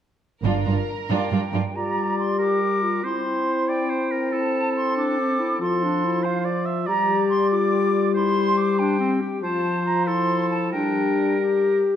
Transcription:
0.44 G1 G2 D4 F4 A#4
0.66 G2 D4 F4
1.09 G2 D4 F4 G5
1.32 G2 D4 F4
1.53 G2 D4 F4
1.75 G3 F4 D5 A#5
2.19 C6
2.38 G4 A#4 D6
2.61 G4
2.82 F4
3.04 C4 E4 C5 C6
3.68 D5 G5
3.90 C5
4.12 A#4
4.32 E4 A4 A5
4.76 C6
4.97 D4 D6
5.18 C4
5.39 E4
5.60 F3 F4 A4 C6
5.83 D4
6.04 E4
6.23 F4 C5 F5
6.45 D5
6.66 E5
6.86 G3 G4 D5 A#5
7.29 C6
7.51 F4 D6
8.14 E4 C5 C6
8.57 D6
8.78 D4 G5
8.99 C4
9.21 G4
9.42 F3 F4 C5 A5
9.85 A#5
10.06 E4 A4 C6
10.50 A5
10.72 G3 D4 A#4 G5
11.41 G4

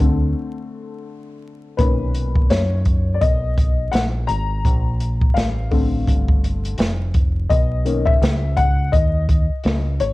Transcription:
Already playing: D2 A5
0.00 D3 A3 C4, kick, closed hi-hat
1.77 B1 A#2 D#3 C#4 B4, kick, closed hi-hat
2.14 closed hi-hat
2.35 kick
2.50 F#2 C#5, snare, closed hi-hat
2.85 kick, closed hi-hat
3.14 D5
3.21 B1 D#5, kick, closed hi-hat
3.58 kick, closed hi-hat
3.91 A#1 F#5, snare, closed hi-hat
4.27 G#1 A#5, closed hi-hat
4.65 A#1, kick, closed hi-hat
5.00 closed hi-hat
5.21 kick
5.34 A1 F5, snare, closed hi-hat
5.71 D3 A3 C4, kick, open hi-hat
6.07 G1, kick, closed hi-hat
6.28 kick
6.44 closed hi-hat
6.65 closed hi-hat
6.78 F1, snare, closed hi-hat
7.14 kick, closed hi-hat
7.50 B1 D#5, kick, closed hi-hat
7.85 D#3 A#3 C#4, closed hi-hat
8.05 E5, kick
8.21 C#2, snare, closed hi-hat
8.57 F#5, kick, closed hi-hat
8.92 D#2 D#5, kick, closed hi-hat
9.29 kick, closed hi-hat
9.50 muted fingered electric bass stroke
9.64 C#2, snare, closed hi-hat
10.00 G#1 C#5, closed hi-hat

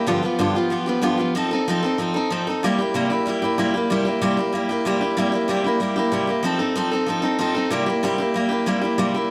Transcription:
0.07 G2 D3 F3 B3 F4 G4
0.23 F3 B3 F4 G4
0.39 G2 D3 F3 B3 F4 G4
0.55 F3 B3 F4 G4
0.70 F3 B3 F4 G4
0.86 F3 B3 F4 G4
1.02 G2 D3 F3 B3 F4 G4
1.18 F3 B3 F4 G4
1.35 F3 C4 D#4 A4
1.51 C4 D#4 A4
1.68 F3 C4 D#4 A4
1.83 C4 D#4 A4
1.98 F3 C4 D#4 A4
2.14 C4 D#4 A4
2.30 F3 C4 D#4 A4
2.47 C4 D#4 A4
2.63 C3 G3 A#3 E4 G4
2.79 A#3 E4 G4
2.94 C3 G3 A#3 E4 G4
3.10 A#3 E4 G4
3.26 G3 A#3 E4 G4
3.42 A#3 E4 G4
3.58 C3 G3 A#3 E4 G4
3.74 A#3 E4 G4
3.90 C3 G3 A#3 E4 G4
4.05 A#3 E4 G4
4.21 C3 G3 A#3 E4 G4
4.37 A#3 E4 G4
4.53 G3 A#3 E4 G4
4.69 A#3 E4 G4
4.85 C3 G3 A#3 E4 G4
5.01 A#3 E4 G4
5.17 C3 G3 A#3 E4 G4
5.32 A#3 E4 G4
5.48 C3 G3 A#3 E4 G4
5.64 A#3 E4 G4
5.80 G3 A#3 E4 G4
5.96 A#3 E4 G4
6.12 C3 G3 A#3 E4 G4
6.27 A#3 E4 G4
6.43 F3 C4 D#4 A4
6.59 C4 D#4 A4
6.76 F3 C4 D#4 A4
6.91 C4 D#4 A4
7.06 F3 C4 D#4 A4
7.22 C4 D#4 A4
7.39 F3 C4 D#4 A4
7.55 C4 D#4 A4
7.71 C3 G3 A#3 E4 G4
7.86 A#3 E4 G4
8.03 C3 G3 A#3 E4 G4
8.18 A#3 E4 G4
8.34 G3 A#3 E4 G4
8.49 A#3 E4 G4
8.66 C3 G3 A#3 E4 G4
8.81 A#3 E4 G4
8.98 C3 G3 A#3 E4 G4
9.14 A#3 E4 G4

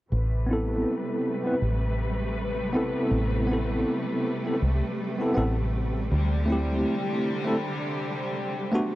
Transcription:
0.11 A1 C3 G3 A3 B4
0.47 B3 C4
0.51 E4 A4
1.44 B3 C4 E4 B4
1.62 A1
2.73 B3 C4 E4 A4
3.11 A1
3.47 B3 C4
3.51 E4 A4
4.44 B3 C4 E4 A4
4.62 C2
5.18 B3 C4 E4 A4
5.34 A1 B3 C4 E4 A4
6.11 D2 C3 D3 G3
6.46 A3 C4
6.50 E4 G4
7.44 A3 C4 E4 A4
8.72 A3 B3 D4 F#4

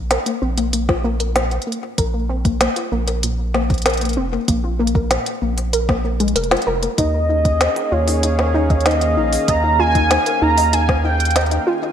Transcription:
Already playing: A#1
0.11 A#4, snare, closed hi-hat
0.26 A#3, closed hi-hat
0.42 A#1 C4
0.57 A#3, closed hi-hat
0.73 A#3, closed hi-hat
0.89 F4, kick, snare
1.04 A#3
1.20 A#4, closed hi-hat
1.36 A#2, snare, closed hi-hat
1.51 closed hi-hat
1.62 closed hi-hat
1.67 A#3
1.72 closed hi-hat
1.98 A#1 A#4, kick, closed hi-hat
2.14 A#3
2.29 C4
2.45 A#3, kick, closed hi-hat
2.61 A#3, snare, closed hi-hat
2.76 F4, closed hi-hat
2.92 A#1 A#3
3.08 A#4, closed hi-hat
3.23 A#2, closed hi-hat
3.54 A#3, snare
3.70 kick, closed hi-hat
3.74 closed hi-hat
3.78 closed hi-hat
3.82 A#4, snare, closed hi-hat
3.86 closed hi-hat
3.90 closed hi-hat
3.94 closed hi-hat
3.97 closed hi-hat
4.01 A#3, closed hi-hat
4.05 closed hi-hat
4.09 closed hi-hat
4.13 F1 C4, closed hi-hat
4.33 A#3
4.48 A#1 A#3, kick, closed hi-hat
4.64 F4
4.79 A#3
4.87 closed hi-hat
4.95 A#4, kick
5.11 A#2, snare, closed hi-hat
5.26 closed hi-hat
5.42 A#1 A#3
5.58 closed hi-hat
5.73 A#4, closed hi-hat
5.89 A#3, kick, snare
6.04 A#3
6.20 G#3, closed hi-hat
6.28 closed hi-hat
6.36 F1 A#4, closed hi-hat
6.44 closed hi-hat
6.51 F4, snare, closed hi-hat
6.57 closed hi-hat
6.62 closed hi-hat
6.67 F1 A#4
6.83 A#3, closed hi-hat
6.98 D#2 D#3 D#4 D#5, kick, closed hi-hat
7.10 C#4
7.22 A#3 G#4
7.29 D#4
7.43 F5, kick, closed hi-hat
7.61 D#5, snare, closed hi-hat
7.76 D#4, closed hi-hat
7.92 D#2 F4 C#5
8.08 D#4, open hi-hat
8.23 D#4, closed hi-hat
8.39 A#4, snare
8.54 D#4
8.70 D#5, kick, closed hi-hat
8.80 closed hi-hat
8.86 D#4 D#5, snare, closed hi-hat
8.91 closed hi-hat
9.01 closed hi-hat
9.17 A#1 D#4
9.33 open hi-hat
9.48 D#2 D#5 A#5, kick, closed hi-hat
9.64 D#4
9.79 F4 G#5
9.95 D#4, kick, closed hi-hat
10.11 D#4, snare, closed hi-hat
10.26 A#4, closed hi-hat
10.42 D#2 D#4 A#5
10.58 D#5, open hi-hat
10.73 D#4 G#5, closed hi-hat
10.89 kick, snare
11.04 D#4 G5
11.20 closed hi-hat
11.25 closed hi-hat
11.30 closed hi-hat
11.36 D#5, snare, closed hi-hat
11.41 closed hi-hat
11.46 closed hi-hat
11.51 D#4, closed hi-hat
11.67 F4
11.82 D#4

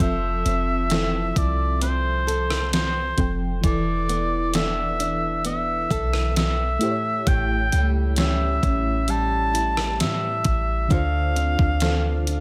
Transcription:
Already playing: F3 C4 F4
0.00 F1 F3 C4 A4 E5, kick, closed hi-hat
0.45 F1 C4, closed hi-hat
0.90 C4 E4 A4, snare, closed hi-hat
1.36 C2 E4 D5, kick, closed hi-hat
1.81 C4 C5, closed hi-hat
2.27 A4, closed hi-hat
2.50 cross-stick
2.73 C5, snare, closed hi-hat
3.17 F1 F3 C4 A4 G5, kick, closed hi-hat
3.61 E1 E3 E4 A4 D5, kick, closed hi-hat
3.67 D5
4.09 B3, closed hi-hat
4.54 B3 D4 A4 E5, snare, closed hi-hat
4.99 D4, closed hi-hat
5.45 B3 E5, closed hi-hat
5.91 B1 A4, kick, closed hi-hat
6.13 cross-stick
6.36 E5, snare, closed hi-hat
6.79 A2 A3 E4 G4, closed hi-hat
6.85 C5
6.91 C#5
7.27 A1 A2 G5, kick, closed hi-hat
7.72 C#2 G3, closed hi-hat
8.16 G3 C#4 E4 E5, snare, closed hi-hat
8.63 A1 C#4, kick, closed hi-hat
9.08 G3 A5, closed hi-hat
9.53 E4, closed hi-hat
9.77 cross-stick
10.00 A2 E5, snare, closed hi-hat
10.44 A1, kick, closed hi-hat
10.88 D2 D3 D4 F4 F5, kick, closed hi-hat
10.94 C5
11.36 C4, closed hi-hat
11.59 D2, kick
11.80 C4 F4 A4, snare, closed hi-hat
12.27 F4, closed hi-hat

